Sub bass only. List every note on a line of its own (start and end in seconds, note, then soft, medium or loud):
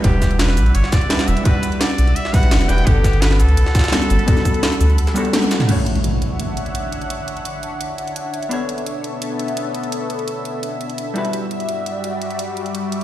0.04 0.59 E1 loud
0.57 0.73 B1 medium
0.75 0.83 G1 medium
1.28 1.36 E1 medium
1.99 2.14 B1 medium
2.43 2.53 B1 medium
2.51 2.67 E1 medium
2.69 2.85 E1 loud
2.87 3.41 G1 loud
3.39 3.55 D2 medium
3.57 3.65 B1 medium
4.10 4.18 G1 medium
4.80 4.98 D2 medium